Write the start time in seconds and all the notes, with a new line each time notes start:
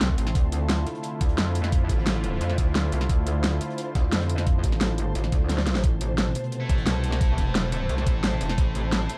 Already playing: C2 C3 A3 C4 A5 C6
0.01 snare, closed hi-hat
0.09 kick
0.18 A1, closed hi-hat
0.27 snare
0.35 D2 D3 E4 F4 C5, kick, closed hi-hat
0.52 closed hi-hat
0.69 snare, closed hi-hat
0.87 closed hi-hat
0.95 closed hi-hat
1.03 closed hi-hat
1.21 D2, kick, closed hi-hat
1.25 A5, closed hi-hat
1.38 F2, snare, closed hi-hat
1.55 closed hi-hat
1.64 snare
1.72 kick, closed hi-hat
1.89 A1, kick, snare, closed hi-hat
1.98 snare
2.06 snare, closed hi-hat
2.24 closed hi-hat
2.41 F2, closed hi-hat
2.50 snare
2.58 D2, kick, snare, closed hi-hat
2.75 snare, closed hi-hat
2.92 C2, closed hi-hat
3.01 snare
3.09 D2, kick, closed hi-hat
3.27 closed hi-hat
3.44 snare, closed hi-hat
3.61 closed hi-hat
3.70 closed hi-hat
3.78 closed hi-hat
3.95 D2, kick, snare, closed hi-hat
4.12 F2, snare, closed hi-hat
4.20 snare, closed hi-hat
4.29 closed hi-hat
4.38 snare, closed hi-hat
4.47 kick, closed hi-hat
4.63 A1, kick, snare, closed hi-hat
4.72 snare
4.81 snare, closed hi-hat
4.98 closed hi-hat
5.15 A1, closed hi-hat
5.24 snare
5.32 D2, kick, snare, closed hi-hat
5.49 snare, closed hi-hat
5.58 snare
5.67 snare, closed hi-hat
5.75 snare
5.83 A1 B2 C3 A3, kick, closed hi-hat
6.01 closed hi-hat
6.18 snare, closed hi-hat
6.35 closed hi-hat
6.44 closed hi-hat
6.52 closed hi-hat
6.61 A3 E4 A4
6.69 A1, kick, closed hi-hat
6.78 closed hi-hat
6.86 C2, snare, closed hi-hat
7.03 closed hi-hat
7.12 snare
7.21 kick, closed hi-hat
7.38 E1, kick, snare, closed hi-hat
7.46 snare
7.55 snare, closed hi-hat
7.72 A3 E4 A4, closed hi-hat
7.89 C2, closed hi-hat
7.98 snare
8.07 A1, kick, snare, closed hi-hat
8.23 snare, closed hi-hat
8.41 E1, closed hi-hat
8.49 snare
8.58 A1 C4, kick, closed hi-hat
8.75 closed hi-hat
8.92 snare, closed hi-hat
9.09 closed hi-hat